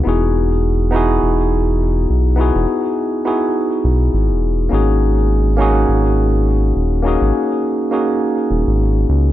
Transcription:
X:1
M:4/4
L:1/16
Q:"Swing 16ths" 1/4=103
K:Elyd
V:1 name="Tine electric piano"
[B,DEFG]6 [B,DEFG]8- [B,DEFG]2 | [B,DEFG]6 [B,DEFG]2 z8 | [A,CDFG]6 [A,CDFG]8- [A,CDFG]2 | [A,CDFG]6 [A,CDFG]2 z8 |]
V:2 name="Analog synth bass" clef=bass
E,,,8 E,,,6 B,,,2- | B,,, E,,, z8 B,,,2 G,,, E,,,3 | G,,,8 G,,,6 D,,,2- | D,,, G,,, z8 D,,, G,,,3 C,,2 |]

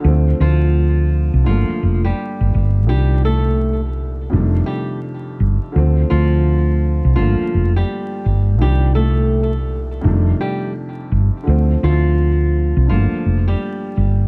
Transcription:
X:1
M:4/4
L:1/16
Q:"Swing 16ths" 1/4=84
K:Cdor
V:1 name="Nylon-string guitar"
z2 [F,F]6 [F,F]3 [G,G]4- [G,G] | [G,G]2 [A,A]3 z4 z [G,G]2 z4 | z2 [F,F]6 [F,F]3 [G,G]4- [G,G] | [G,G]2 [A,A]3 z4 z [G,G]2 z4 |
z2 [F,F]6 [F,F]3 [G,G]4- [G,G] |]
V:2 name="Grand piano" clef=bass
[D,F,A,C]8 [G,,D,F,A,B,]8 | [C,,B,,E,F,G,D]8 [F,,C,E,G,A,D]8 | [D,F,A,C]8 [G,,D,F,A,B,]8 | [C,,B,,E,F,G,D]8 [F,,C,E,G,A,D]8 |
[D,F,A,C]8 [G,,D,F,A,B,]8 |]
V:3 name="Fretless electric bass" clef=bass
D,,2 D,,4- D,, C,, G,,, z F,,,2 z G,,, G,,,2 | C,,8 F,,,2 z4 G,,, z | D,,2 D,,4- D,, C,, G,,, z F,,,2 z2 G,,,2 | C,,8 F,,,2 z4 G,,, z |
D,,2 D,,4- D,, C,, G,,, z F,,,2 z2 G,,,2 |]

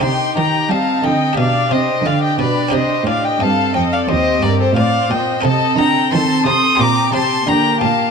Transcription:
X:1
M:4/4
L:1/16
Q:1/4=89
K:Cdor
V:1 name="Violin"
c'2 b2 a2 g2 f2 e2 f g d2 | e2 f g a2 g f e2 d c f2 g2 | [K:Gm] a2 b2 c'2 e'2 d'2 c'2 b2 a2 |]
V:2 name="Violin section"
g2 g2 f2 e2 d2 c2 d e =B2 | c2 d e f2 e d c2 B A d2 e2 | [K:Gm] e2 g2 a2 c'2 b2 a2 g2 f2 |]
V:3 name="Violin section"
G4 E4 G8- | G4 A4 G4 c4 | [K:Gm] A4 A4 G4 G4 |]
V:4 name="Viola section"
E4 C4 D4 D4- | D4 C12 | [K:Gm] C12 B,4 |]
V:5 name="Harpsichord"
[CEG]8 [DG]8 | [CEG]16 | [K:Gm] [CEA]8 [DG]8 |]
V:6 name="Harpsichord" clef=bass
C,2 E,2 G,2 D,2 =B,,2 C,2 D,2 B,,2 | C,2 A,,2 G,,2 F,,2 E,,2 G,,2 A,,2 B,,2 | [K:Gm] C,2 D,2 E,2 C,2 B,,2 C,2 D,2 B,,2 |]
V:7 name="Cello section" clef=bass
C,2 E,2 G,2 D,2 =B,,2 C,2 D,2 B,,2 | C,2 A,,2 G,,2 F,,2 E,,2 G,,2 A,,2 B,,2 | [K:Gm] C,2 D,2 E,2 C,2 B,,2 C,2 D,2 B,,2 |]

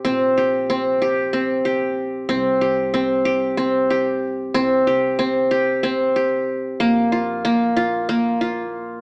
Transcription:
X:1
M:7/8
L:1/8
Q:1/4=93
K:Bbmix
V:1 name="Qanun"
C G C G C G2 | C G C G C G2 | C G C G C G2 | B, F B, F B, F2 |]
V:2 name="Upright bass" clef=bass
B,,,6- B,,, | C,,6- C,, | C,,6- C,, | B,,,6- B,,, |]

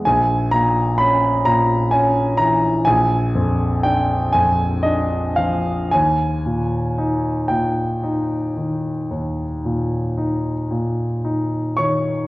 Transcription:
X:1
M:12/8
L:1/8
Q:3/8=38
K:D#phr
V:1 name="Grand piano"
g a b a g a g2 =g ^g d ^e | g3 =g6 z2 [cc'] |]
V:2 name="Grand piano" clef=bass
A,,, A,, C A,, C E, A,,, ^E,, =D E,, D ^E, | D,, A,, D A,, D D, D,, A,, D A,, D D, |]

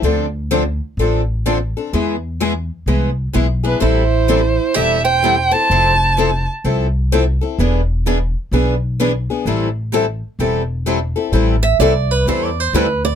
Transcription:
X:1
M:4/4
L:1/8
Q:"Swing" 1/4=128
K:Am
V:1 name="Violin"
z8 | z6 z B | c4 e g2 a- | a3 z4 z |
z8 | z8 | z8 |]
V:2 name="Steel-string acoustic guitar"
z8 | z6 z D | E4 G c2 c- | c3 z4 z |
z8 | z8 | z e d B (3c d c B d |]
V:3 name="Steel-string acoustic guitar"
[D,F,CDA] z [D,F,CDA] z [D,F,CDA] z [D,F,CDA] [CDA] | [E,^G,B,E^G] z [E,G,B,EG] z [E,G,B,EG] z [E,G,B,EG] [B,EG] | [E,G,CEA] z [E,G,CEA] z [E,G,CEA] z [E,G,CEA] [CEA] | [F,CEA] z [F,CEA] z [F,CEA] z [F,CEA] [CEA] |
[E,B,D^G] z [E,B,DG] z [E,B,DG] z [E,B,DG] [B,DG] | [E,G,CEA] z [E,G,CEA] z [E,G,CEA] z [E,G,CEA] [CEA] | [E,G,CEA] z [E,G,CEA] z [E,G,CEA] z [E,G,CEA] z |]
V:4 name="Steel-string acoustic guitar"
[D,F,CDA] z [D,F,CDA] z [D,F,CDA] z [D,F,CDA] z | [E,^G,B,E^G] z [E,G,B,EG] z [E,G,B,EG] z [E,G,B,EG] z | [E,G,CEA] z [E,G,CEA] z [E,G,CEA] z [E,G,CEA] z | [F,CEA] z [F,CEA] z [F,CEA] z [F,CEA] z |
[E,B,D^GB] z [E,B,DGB] z [E,B,DGB] z [E,B,DGB] z | [E,G,CEA] z [E,G,CEA] z [E,G,CEA] z [E,G,CEA] z | [E,G,CEA] z [E,G,CEA] z [E,G,CEA] z [E,G,CEA] z |]
V:5 name="Upright bass" clef=bass
D,,4 A,,,4 | E,,4 C,,2 B,,,2 | A,,,4 E,,,4 | F,,,4 C,,4 |
E,,,4 B,,,4 | A,,,4 E,,,4 | A,,,2 C,,2 E,,2 D,,2 |]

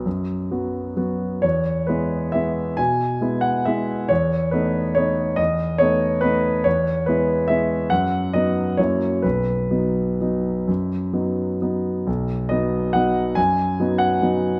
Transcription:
X:1
M:3/4
L:1/8
Q:1/4=137
K:Bmix
V:1 name="Grand piano"
d4 z2 | c2 B2 e2 | g3 f e2 | c2 B2 c2 |
d2 c2 B2 | [K:B] c2 B2 e2 | f2 d2 c2 | B6- |
B4 z2 | z2 d2 f2 | g3 f3 |]
V:2 name="Grand piano"
F,,2 [F,B,F]2 [F,B,F]2 | E,,2 [G,B,E]2 [G,B,E]2 | B,,2 [G,B,E]2 [G,B,E]2 | E,,2 [A,B,D]2 [A,B,D]2 |
E,,2 [A,B,D]2 [A,B,D]2 | [K:B] E,,2 [G,B,E]2 [G,B,E]2 | F,,2 [F,B,D]2 [F,,F,A,E]2 | B,,,2 [F,B,D]2 [F,B,D]2 |
F,,2 [F,B,D]2 [F,B,D]2 | B,,,2 [F,B,D]2 [F,B,D]2 | F,,2 [F,B,D]2 [F,B,D]2 |]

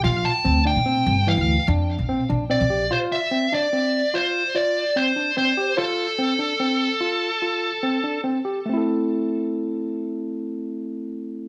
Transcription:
X:1
M:7/4
L:1/16
Q:1/4=146
K:Aphr
V:1 name="Lead electric guitar"
f2 a4 g6 f4 z8 d4 | c2 e4 d6 c4 d4 c4 c4 | A24 z4 | z24 z4 |]
V:2 name="Tine electric piano"
F4 C2 D2 C4 E,4 D4 C2 D2 C2 G2 | F4 C2 D2 C4 F4 F4 C2 D2 C2 G2 | F4 C2 D2 C4 F4 F4 C2 D2 C2 G2 | [A,CEA]24- [A,CEA]4 |]
V:3 name="Upright bass" clef=bass
B,,,2 z2 D,,3 B,,2 z G,,,3 D,,2 z F,,3 B,,,2 z B,,,2 z B,,,3 | z24 z4 | z24 z4 | z24 z4 |]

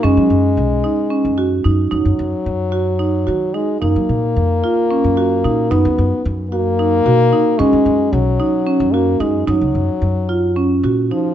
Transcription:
X:1
M:7/8
L:1/16
Q:1/4=111
K:F#
V:1 name="Marimba"
C4 z2 D2 C2 F2 D2 | D4 z2 F2 D2 F2 D2 | D4 z2 E2 C2 F2 D2 | D4 z2 F2 D2 F2 D2 |
C4 z2 D2 C2 F2 D2 | D4 z2 E2 C2 F2 D2 |]
V:2 name="French horn" clef=bass
G,12 z2 | F,12 G,2 | A,12- A,2 | B,4 z2 A,8 |
G,4 F,6 A,2 G,2 | F,8- F,2 z2 E,2 |]
V:3 name="Upright bass" clef=bass
F,, F, F,,2 B,,,2 z3 F,,3 F,,2 | F,, F,, F,, z F,,6 D,2 z2 | F,, F, A,,2 E,,2 z3 F,,3 A,,2 | F,, D,, F,, z F,,6 B,,2 z2 |
F,, F, F,,2 B,,,2 z3 F,,3 F,,2 | F,, C,, F,, z F,,6 A,,2 z2 |]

